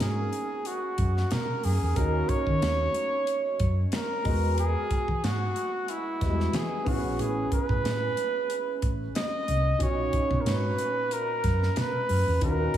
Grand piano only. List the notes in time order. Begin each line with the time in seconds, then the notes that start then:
Already playing: A#3 C#4 D#4 F#4
1.95 A#3 C#4 D#4 F#4
4.24 G#3 B3 F#4 D#5
6.21 G3 B3 F#4 D#5
6.27 G#3
6.84 B3 C#4 E4 G#4
9.79 A#2 C#4 D#4 F#4
12.41 A#2 C#4 D#4 F#4